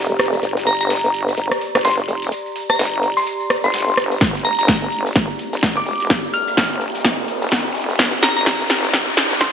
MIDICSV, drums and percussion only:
0, 0, Header, 1, 2, 480
1, 0, Start_track
1, 0, Key_signature, -2, "minor"
1, 0, Tempo, 472441
1, 439, Time_signature, 4, 2, 24, 8
1, 9673, End_track
2, 0, Start_track
2, 0, Title_t, "Drums"
2, 99, Note_on_c, 9, 70, 40
2, 198, Note_on_c, 9, 37, 77
2, 198, Note_on_c, 9, 38, 40
2, 198, Note_on_c, 9, 42, 63
2, 198, Note_on_c, 9, 46, 91
2, 201, Note_off_c, 9, 70, 0
2, 299, Note_off_c, 9, 37, 0
2, 299, Note_off_c, 9, 46, 0
2, 300, Note_off_c, 9, 38, 0
2, 300, Note_off_c, 9, 42, 0
2, 336, Note_on_c, 9, 70, 73
2, 438, Note_off_c, 9, 70, 0
2, 438, Note_on_c, 9, 42, 85
2, 438, Note_on_c, 9, 70, 68
2, 539, Note_off_c, 9, 42, 0
2, 540, Note_off_c, 9, 70, 0
2, 580, Note_on_c, 9, 38, 59
2, 587, Note_on_c, 9, 70, 40
2, 677, Note_on_c, 9, 46, 102
2, 678, Note_on_c, 9, 42, 67
2, 681, Note_off_c, 9, 38, 0
2, 688, Note_off_c, 9, 70, 0
2, 779, Note_off_c, 9, 42, 0
2, 779, Note_off_c, 9, 46, 0
2, 821, Note_on_c, 9, 70, 78
2, 916, Note_off_c, 9, 70, 0
2, 916, Note_on_c, 9, 70, 62
2, 918, Note_on_c, 9, 38, 108
2, 918, Note_on_c, 9, 42, 82
2, 1018, Note_off_c, 9, 70, 0
2, 1019, Note_off_c, 9, 38, 0
2, 1019, Note_off_c, 9, 42, 0
2, 1060, Note_on_c, 9, 42, 44
2, 1064, Note_on_c, 9, 70, 42
2, 1158, Note_off_c, 9, 42, 0
2, 1158, Note_on_c, 9, 42, 62
2, 1158, Note_on_c, 9, 46, 90
2, 1165, Note_off_c, 9, 70, 0
2, 1259, Note_off_c, 9, 42, 0
2, 1259, Note_off_c, 9, 46, 0
2, 1302, Note_on_c, 9, 70, 80
2, 1398, Note_on_c, 9, 42, 82
2, 1400, Note_off_c, 9, 70, 0
2, 1400, Note_on_c, 9, 70, 62
2, 1499, Note_off_c, 9, 42, 0
2, 1501, Note_off_c, 9, 70, 0
2, 1539, Note_on_c, 9, 37, 59
2, 1542, Note_on_c, 9, 70, 45
2, 1638, Note_on_c, 9, 42, 69
2, 1638, Note_on_c, 9, 46, 107
2, 1641, Note_off_c, 9, 37, 0
2, 1643, Note_off_c, 9, 70, 0
2, 1739, Note_off_c, 9, 42, 0
2, 1740, Note_off_c, 9, 46, 0
2, 1780, Note_on_c, 9, 37, 73
2, 1780, Note_on_c, 9, 38, 43
2, 1783, Note_on_c, 9, 70, 75
2, 1877, Note_off_c, 9, 38, 0
2, 1877, Note_on_c, 9, 38, 114
2, 1877, Note_on_c, 9, 42, 87
2, 1880, Note_off_c, 9, 70, 0
2, 1880, Note_on_c, 9, 70, 61
2, 1881, Note_off_c, 9, 37, 0
2, 1979, Note_off_c, 9, 38, 0
2, 1979, Note_off_c, 9, 42, 0
2, 1982, Note_off_c, 9, 70, 0
2, 2027, Note_on_c, 9, 70, 38
2, 2118, Note_on_c, 9, 42, 68
2, 2118, Note_on_c, 9, 46, 90
2, 2129, Note_off_c, 9, 70, 0
2, 2220, Note_off_c, 9, 42, 0
2, 2220, Note_off_c, 9, 46, 0
2, 2256, Note_on_c, 9, 70, 77
2, 2356, Note_off_c, 9, 70, 0
2, 2356, Note_on_c, 9, 70, 68
2, 2358, Note_on_c, 9, 42, 86
2, 2457, Note_off_c, 9, 70, 0
2, 2460, Note_off_c, 9, 42, 0
2, 2497, Note_on_c, 9, 70, 38
2, 2598, Note_on_c, 9, 42, 69
2, 2598, Note_on_c, 9, 46, 106
2, 2599, Note_off_c, 9, 70, 0
2, 2699, Note_off_c, 9, 46, 0
2, 2700, Note_off_c, 9, 42, 0
2, 2737, Note_on_c, 9, 70, 75
2, 2740, Note_on_c, 9, 37, 60
2, 2838, Note_off_c, 9, 70, 0
2, 2838, Note_on_c, 9, 38, 113
2, 2838, Note_on_c, 9, 42, 82
2, 2840, Note_on_c, 9, 70, 62
2, 2842, Note_off_c, 9, 37, 0
2, 2940, Note_off_c, 9, 38, 0
2, 2940, Note_off_c, 9, 42, 0
2, 2941, Note_off_c, 9, 70, 0
2, 2981, Note_on_c, 9, 70, 41
2, 3078, Note_on_c, 9, 42, 68
2, 3078, Note_on_c, 9, 46, 87
2, 3083, Note_off_c, 9, 70, 0
2, 3180, Note_off_c, 9, 42, 0
2, 3180, Note_off_c, 9, 46, 0
2, 3220, Note_on_c, 9, 38, 36
2, 3221, Note_on_c, 9, 70, 75
2, 3318, Note_on_c, 9, 42, 83
2, 3319, Note_off_c, 9, 70, 0
2, 3319, Note_on_c, 9, 70, 63
2, 3322, Note_off_c, 9, 38, 0
2, 3420, Note_off_c, 9, 42, 0
2, 3421, Note_off_c, 9, 70, 0
2, 3454, Note_on_c, 9, 70, 43
2, 3556, Note_off_c, 9, 70, 0
2, 3558, Note_on_c, 9, 37, 76
2, 3558, Note_on_c, 9, 42, 70
2, 3558, Note_on_c, 9, 46, 107
2, 3659, Note_off_c, 9, 37, 0
2, 3659, Note_off_c, 9, 46, 0
2, 3660, Note_off_c, 9, 42, 0
2, 3703, Note_on_c, 9, 70, 74
2, 3796, Note_off_c, 9, 70, 0
2, 3796, Note_on_c, 9, 70, 69
2, 3799, Note_on_c, 9, 38, 112
2, 3799, Note_on_c, 9, 42, 90
2, 3898, Note_off_c, 9, 70, 0
2, 3900, Note_off_c, 9, 38, 0
2, 3900, Note_off_c, 9, 42, 0
2, 3941, Note_on_c, 9, 70, 44
2, 4038, Note_on_c, 9, 37, 81
2, 4038, Note_on_c, 9, 46, 88
2, 4039, Note_on_c, 9, 38, 41
2, 4039, Note_on_c, 9, 42, 65
2, 4043, Note_off_c, 9, 70, 0
2, 4139, Note_off_c, 9, 37, 0
2, 4139, Note_off_c, 9, 46, 0
2, 4140, Note_off_c, 9, 38, 0
2, 4140, Note_off_c, 9, 42, 0
2, 4178, Note_on_c, 9, 70, 77
2, 4278, Note_on_c, 9, 36, 114
2, 4278, Note_on_c, 9, 38, 50
2, 4278, Note_on_c, 9, 42, 84
2, 4280, Note_off_c, 9, 70, 0
2, 4282, Note_on_c, 9, 70, 59
2, 4380, Note_off_c, 9, 36, 0
2, 4380, Note_off_c, 9, 38, 0
2, 4380, Note_off_c, 9, 42, 0
2, 4384, Note_off_c, 9, 70, 0
2, 4415, Note_on_c, 9, 70, 38
2, 4421, Note_on_c, 9, 38, 56
2, 4517, Note_off_c, 9, 70, 0
2, 4518, Note_on_c, 9, 42, 69
2, 4518, Note_on_c, 9, 46, 97
2, 4522, Note_off_c, 9, 38, 0
2, 4620, Note_off_c, 9, 42, 0
2, 4620, Note_off_c, 9, 46, 0
2, 4660, Note_on_c, 9, 42, 58
2, 4669, Note_on_c, 9, 70, 76
2, 4754, Note_off_c, 9, 70, 0
2, 4754, Note_on_c, 9, 70, 63
2, 4758, Note_off_c, 9, 42, 0
2, 4758, Note_on_c, 9, 36, 112
2, 4758, Note_on_c, 9, 38, 117
2, 4758, Note_on_c, 9, 42, 87
2, 4855, Note_off_c, 9, 70, 0
2, 4860, Note_off_c, 9, 36, 0
2, 4860, Note_off_c, 9, 38, 0
2, 4860, Note_off_c, 9, 42, 0
2, 4900, Note_on_c, 9, 42, 46
2, 4903, Note_on_c, 9, 70, 38
2, 4998, Note_on_c, 9, 46, 88
2, 4999, Note_off_c, 9, 42, 0
2, 4999, Note_on_c, 9, 42, 67
2, 5005, Note_off_c, 9, 70, 0
2, 5100, Note_off_c, 9, 42, 0
2, 5100, Note_off_c, 9, 46, 0
2, 5140, Note_on_c, 9, 42, 58
2, 5143, Note_on_c, 9, 70, 80
2, 5238, Note_off_c, 9, 42, 0
2, 5238, Note_on_c, 9, 36, 115
2, 5238, Note_on_c, 9, 42, 86
2, 5239, Note_off_c, 9, 42, 0
2, 5239, Note_on_c, 9, 38, 51
2, 5239, Note_on_c, 9, 42, 50
2, 5241, Note_off_c, 9, 70, 0
2, 5241, Note_on_c, 9, 70, 68
2, 5340, Note_off_c, 9, 36, 0
2, 5340, Note_off_c, 9, 38, 0
2, 5340, Note_off_c, 9, 42, 0
2, 5343, Note_off_c, 9, 70, 0
2, 5387, Note_on_c, 9, 70, 37
2, 5478, Note_on_c, 9, 46, 109
2, 5479, Note_on_c, 9, 42, 68
2, 5488, Note_off_c, 9, 70, 0
2, 5580, Note_off_c, 9, 42, 0
2, 5580, Note_off_c, 9, 46, 0
2, 5620, Note_on_c, 9, 42, 62
2, 5621, Note_on_c, 9, 38, 43
2, 5621, Note_on_c, 9, 70, 76
2, 5716, Note_off_c, 9, 70, 0
2, 5716, Note_on_c, 9, 70, 68
2, 5718, Note_off_c, 9, 38, 0
2, 5718, Note_off_c, 9, 42, 0
2, 5718, Note_on_c, 9, 36, 118
2, 5718, Note_on_c, 9, 38, 55
2, 5718, Note_on_c, 9, 42, 49
2, 5719, Note_off_c, 9, 38, 0
2, 5719, Note_off_c, 9, 42, 0
2, 5719, Note_on_c, 9, 38, 119
2, 5719, Note_on_c, 9, 42, 85
2, 5817, Note_off_c, 9, 70, 0
2, 5820, Note_off_c, 9, 36, 0
2, 5820, Note_off_c, 9, 38, 0
2, 5820, Note_off_c, 9, 42, 0
2, 5861, Note_on_c, 9, 70, 38
2, 5958, Note_on_c, 9, 46, 88
2, 5959, Note_on_c, 9, 42, 67
2, 5962, Note_off_c, 9, 70, 0
2, 6060, Note_off_c, 9, 46, 0
2, 6061, Note_off_c, 9, 42, 0
2, 6100, Note_on_c, 9, 42, 66
2, 6104, Note_on_c, 9, 70, 74
2, 6197, Note_off_c, 9, 70, 0
2, 6197, Note_on_c, 9, 70, 61
2, 6198, Note_on_c, 9, 36, 113
2, 6199, Note_off_c, 9, 42, 0
2, 6199, Note_on_c, 9, 38, 58
2, 6199, Note_on_c, 9, 42, 50
2, 6299, Note_off_c, 9, 70, 0
2, 6300, Note_off_c, 9, 36, 0
2, 6300, Note_off_c, 9, 38, 0
2, 6300, Note_off_c, 9, 42, 0
2, 6343, Note_on_c, 9, 70, 37
2, 6438, Note_on_c, 9, 46, 98
2, 6439, Note_on_c, 9, 42, 70
2, 6444, Note_off_c, 9, 70, 0
2, 6540, Note_off_c, 9, 42, 0
2, 6540, Note_off_c, 9, 46, 0
2, 6581, Note_on_c, 9, 42, 63
2, 6581, Note_on_c, 9, 70, 76
2, 6678, Note_on_c, 9, 36, 114
2, 6679, Note_off_c, 9, 42, 0
2, 6679, Note_off_c, 9, 70, 0
2, 6679, Note_on_c, 9, 38, 116
2, 6679, Note_on_c, 9, 42, 88
2, 6679, Note_on_c, 9, 70, 66
2, 6780, Note_off_c, 9, 36, 0
2, 6780, Note_off_c, 9, 38, 0
2, 6780, Note_off_c, 9, 42, 0
2, 6780, Note_off_c, 9, 70, 0
2, 6823, Note_on_c, 9, 70, 40
2, 6919, Note_on_c, 9, 42, 69
2, 6919, Note_on_c, 9, 46, 86
2, 6925, Note_off_c, 9, 70, 0
2, 7020, Note_off_c, 9, 42, 0
2, 7020, Note_off_c, 9, 46, 0
2, 7059, Note_on_c, 9, 70, 80
2, 7060, Note_on_c, 9, 42, 58
2, 7061, Note_on_c, 9, 38, 38
2, 7158, Note_off_c, 9, 38, 0
2, 7158, Note_off_c, 9, 42, 0
2, 7158, Note_on_c, 9, 36, 110
2, 7158, Note_on_c, 9, 38, 66
2, 7158, Note_on_c, 9, 42, 51
2, 7159, Note_off_c, 9, 42, 0
2, 7159, Note_on_c, 9, 42, 85
2, 7160, Note_off_c, 9, 70, 0
2, 7161, Note_on_c, 9, 70, 59
2, 7260, Note_off_c, 9, 36, 0
2, 7260, Note_off_c, 9, 38, 0
2, 7260, Note_off_c, 9, 42, 0
2, 7263, Note_off_c, 9, 70, 0
2, 7296, Note_on_c, 9, 70, 40
2, 7397, Note_off_c, 9, 70, 0
2, 7398, Note_on_c, 9, 46, 103
2, 7399, Note_on_c, 9, 42, 68
2, 7500, Note_off_c, 9, 42, 0
2, 7500, Note_off_c, 9, 46, 0
2, 7538, Note_on_c, 9, 70, 72
2, 7541, Note_on_c, 9, 42, 65
2, 7638, Note_off_c, 9, 42, 0
2, 7638, Note_on_c, 9, 36, 116
2, 7638, Note_on_c, 9, 38, 121
2, 7638, Note_on_c, 9, 42, 87
2, 7639, Note_off_c, 9, 70, 0
2, 7639, Note_on_c, 9, 70, 62
2, 7740, Note_off_c, 9, 36, 0
2, 7740, Note_off_c, 9, 38, 0
2, 7740, Note_off_c, 9, 42, 0
2, 7740, Note_off_c, 9, 70, 0
2, 7781, Note_on_c, 9, 70, 40
2, 7878, Note_on_c, 9, 46, 91
2, 7879, Note_on_c, 9, 38, 42
2, 7879, Note_on_c, 9, 42, 68
2, 7883, Note_off_c, 9, 70, 0
2, 7980, Note_off_c, 9, 38, 0
2, 7980, Note_off_c, 9, 42, 0
2, 7980, Note_off_c, 9, 46, 0
2, 8020, Note_on_c, 9, 42, 68
2, 8024, Note_on_c, 9, 70, 74
2, 8118, Note_off_c, 9, 42, 0
2, 8118, Note_on_c, 9, 36, 113
2, 8118, Note_on_c, 9, 38, 76
2, 8118, Note_on_c, 9, 42, 55
2, 8119, Note_off_c, 9, 42, 0
2, 8119, Note_on_c, 9, 42, 84
2, 8121, Note_off_c, 9, 70, 0
2, 8121, Note_on_c, 9, 70, 65
2, 8220, Note_off_c, 9, 36, 0
2, 8220, Note_off_c, 9, 38, 0
2, 8220, Note_off_c, 9, 42, 0
2, 8223, Note_off_c, 9, 70, 0
2, 8256, Note_on_c, 9, 70, 34
2, 8261, Note_on_c, 9, 38, 60
2, 8358, Note_off_c, 9, 38, 0
2, 8358, Note_off_c, 9, 70, 0
2, 8358, Note_on_c, 9, 38, 74
2, 8358, Note_on_c, 9, 42, 70
2, 8358, Note_on_c, 9, 46, 101
2, 8460, Note_off_c, 9, 38, 0
2, 8460, Note_off_c, 9, 42, 0
2, 8460, Note_off_c, 9, 46, 0
2, 8499, Note_on_c, 9, 70, 80
2, 8500, Note_on_c, 9, 42, 66
2, 8598, Note_off_c, 9, 42, 0
2, 8598, Note_on_c, 9, 36, 107
2, 8598, Note_on_c, 9, 38, 86
2, 8598, Note_on_c, 9, 42, 56
2, 8600, Note_off_c, 9, 70, 0
2, 8602, Note_on_c, 9, 70, 60
2, 8700, Note_off_c, 9, 36, 0
2, 8700, Note_off_c, 9, 38, 0
2, 8700, Note_off_c, 9, 42, 0
2, 8703, Note_off_c, 9, 70, 0
2, 8740, Note_on_c, 9, 42, 45
2, 8742, Note_on_c, 9, 70, 39
2, 8838, Note_off_c, 9, 42, 0
2, 8838, Note_on_c, 9, 38, 79
2, 8838, Note_on_c, 9, 42, 67
2, 8838, Note_on_c, 9, 46, 85
2, 8844, Note_off_c, 9, 70, 0
2, 8940, Note_off_c, 9, 38, 0
2, 8940, Note_off_c, 9, 42, 0
2, 8940, Note_off_c, 9, 46, 0
2, 8976, Note_on_c, 9, 70, 80
2, 8980, Note_on_c, 9, 42, 67
2, 9077, Note_off_c, 9, 70, 0
2, 9077, Note_on_c, 9, 70, 57
2, 9078, Note_off_c, 9, 42, 0
2, 9078, Note_on_c, 9, 36, 111
2, 9078, Note_on_c, 9, 38, 83
2, 9078, Note_on_c, 9, 42, 56
2, 9079, Note_off_c, 9, 42, 0
2, 9079, Note_on_c, 9, 42, 86
2, 9179, Note_off_c, 9, 70, 0
2, 9180, Note_off_c, 9, 36, 0
2, 9180, Note_off_c, 9, 38, 0
2, 9180, Note_off_c, 9, 42, 0
2, 9223, Note_on_c, 9, 70, 34
2, 9318, Note_on_c, 9, 38, 92
2, 9318, Note_on_c, 9, 42, 71
2, 9318, Note_on_c, 9, 46, 102
2, 9325, Note_off_c, 9, 70, 0
2, 9420, Note_off_c, 9, 38, 0
2, 9420, Note_off_c, 9, 42, 0
2, 9420, Note_off_c, 9, 46, 0
2, 9460, Note_on_c, 9, 38, 45
2, 9460, Note_on_c, 9, 42, 70
2, 9462, Note_on_c, 9, 70, 81
2, 9557, Note_off_c, 9, 70, 0
2, 9557, Note_on_c, 9, 70, 62
2, 9558, Note_off_c, 9, 38, 0
2, 9558, Note_off_c, 9, 42, 0
2, 9558, Note_on_c, 9, 36, 117
2, 9558, Note_on_c, 9, 38, 84
2, 9558, Note_on_c, 9, 42, 56
2, 9559, Note_off_c, 9, 38, 0
2, 9559, Note_off_c, 9, 42, 0
2, 9559, Note_on_c, 9, 38, 121
2, 9559, Note_on_c, 9, 42, 91
2, 9659, Note_off_c, 9, 70, 0
2, 9660, Note_off_c, 9, 36, 0
2, 9660, Note_off_c, 9, 38, 0
2, 9660, Note_off_c, 9, 42, 0
2, 9673, End_track
0, 0, End_of_file